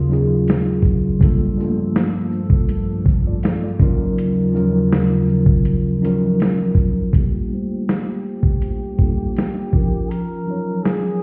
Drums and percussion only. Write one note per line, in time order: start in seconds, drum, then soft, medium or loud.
0.13 shaker soft
0.48 snare loud
0.48 closed hi-hat medium
0.82 kick medium
0.82 shaker soft
1.21 kick loud
1.21 closed hi-hat medium
1.60 shaker soft
1.96 snare loud
1.96 closed hi-hat medium
2.32 shaker soft
2.50 kick loud
2.69 closed hi-hat medium
3.06 kick medium
3.06 shaker soft
3.43 snare loud
3.43 closed hi-hat medium
3.80 kick loud
3.80 shaker soft
4.18 closed hi-hat medium
4.56 shaker soft
4.93 snare loud
4.93 closed hi-hat medium
5.28 shaker soft
5.46 kick loud
5.65 closed hi-hat medium
6.04 closed hi-hat medium
6.04 shaker medium
6.40 snare loud
6.40 closed hi-hat medium
6.75 kick medium
6.75 shaker soft
7.13 kick loud
7.13 closed hi-hat medium
7.89 snare loud
7.89 closed hi-hat medium
8.43 kick medium
8.62 closed hi-hat medium
8.99 kick medium
9.36 snare medium
9.36 closed hi-hat soft
9.73 kick medium
10.11 closed hi-hat medium
10.85 snare loud
10.85 closed hi-hat medium